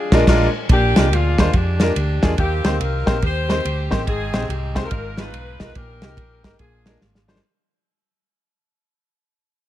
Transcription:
Already playing: D4 F4 G#4
0.12 A#1 G#3 A#3 D4 F4 A#4, kick, snare, crash
0.27 A#1 G#3 A#3 D4 F4 A#4, kick, snare, crash
0.69 A#1 A#2 D4 G4, kick, ride bell
0.96 C2 G#3 A#3 D4 F4 A#4, snare, ride bell
1.11 D2 G#3 D4 F4, ride bell
1.38 D#2 G#3 A#3 D4 F4 C5, kick, snare, ride bell
1.53 F2 D4 G4, kick, ride bell
1.80 G#3 A#3 D4 F4 A#4, snare, ride bell
1.96 D2, ride bell
2.22 G#3 A#3 D4 F4 G#4, kick, snare, ride bell
2.38 D#2 D#3 A#3 C4 G4, kick, ride bell
2.64 D2 A#3 C4 D#4 G4 C5, snare, ride bell
2.80 C2 G4 A#4, ride bell
3.06 A#1 A#3 C4 D#4 G4 C5, kick, snare, ride bell
3.22 D#2 G4 C5, kick, ride bell
3.48 A#3 C4 D#4 G4 C5, snare, ride bell
3.65 D2, ride bell
3.90 A1 A#3 C4 D#4 G4 C5, kick, snare, ride bell
4.07 G#1 G#2 C4 D#4 G#4, kick, ride bell
4.33 A#1 G#3 C4 D#4 G4 C5, snare, ride bell
4.49 C2 G4, ride bell
4.75 G#3 C4 D#4 G4 G#4 C5, kick, snare, ride bell
4.84 D#4 F4 A#4
4.91 G#1 G#2, kick, ride bell
5.17 G#3 B3 D#4 F4 B4, snare, ride bell
5.34 B1, ride bell
5.60 B1 G#3 B3 D#4 F4 A#4, kick, snare, ride bell
5.75 A#1 A#2 D#4 G4 A#4, kick, ride bell
6.01 C2 A#3 D#4 G4, snare, ride bell
6.17 A#1, kick, ride bell
6.43 G#1 A#3 D#4 A#4, kick, snare, ride bell
6.59 A#1 A#2 D4 F4 G#4, kick, ride bell
6.86 G#3 A#3 D4 F4 A#4, snare, ride bell
7.01 G#1, snare
7.15 snare
7.28 G#3 A#3 D4 F4 C5, snare
7.36 snare

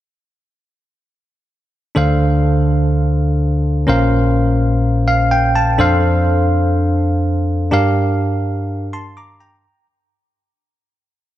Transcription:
1.95 D2 D3 D4 A4 C5 F5
3.87 A#1 A#2 C#4 A#4 C5 F5
5.08 F5
5.31 G5
5.56 A5
5.78 F2 D4 A4 C5 F5
7.71 G2 D4 G4 A#4 F5
8.93 A5 C6
9.17 A#5 D6
9.40 G5 A#5

